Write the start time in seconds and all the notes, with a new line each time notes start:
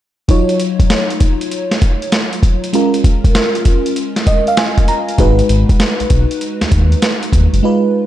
0.28 F#3 D#4 F4 C#5, kick, closed hi-hat
0.49 closed hi-hat
0.60 closed hi-hat
0.80 kick, closed hi-hat
0.90 snare, closed hi-hat
1.10 closed hi-hat
1.20 kick, closed hi-hat
1.41 closed hi-hat
1.51 closed hi-hat
1.71 snare, closed hi-hat
1.82 kick, closed hi-hat
2.02 closed hi-hat
2.12 snare, closed hi-hat
2.33 closed hi-hat
2.43 kick, closed hi-hat
2.64 closed hi-hat
2.73 G#3 C#4 F4 A#4, closed hi-hat
2.94 closed hi-hat
3.04 kick, closed hi-hat
3.24 kick, closed hi-hat
3.35 snare, closed hi-hat
3.55 closed hi-hat
3.65 kick, closed hi-hat
3.86 closed hi-hat
3.96 closed hi-hat
4.16 snare, closed hi-hat
4.27 D#5, kick, closed hi-hat
4.47 F5, closed hi-hat
4.57 G#5, snare, closed hi-hat
4.78 kick, closed hi-hat
4.88 A#5, closed hi-hat
5.09 closed hi-hat
5.18 G#1 G#3 D#4 F#4 B4, kick, closed hi-hat
5.39 closed hi-hat
5.49 G#1, closed hi-hat
5.69 kick, closed hi-hat
5.80 snare, closed hi-hat
6.00 B1, closed hi-hat
6.10 B1, kick, closed hi-hat
6.31 closed hi-hat
6.41 closed hi-hat
6.61 D#2, snare, closed hi-hat
6.72 D#2, kick, closed hi-hat
6.92 closed hi-hat
7.02 snare, closed hi-hat
7.23 closed hi-hat
7.33 D#2, kick, closed hi-hat
7.53 F#1, closed hi-hat
7.63 G#3 D#4 F4 B4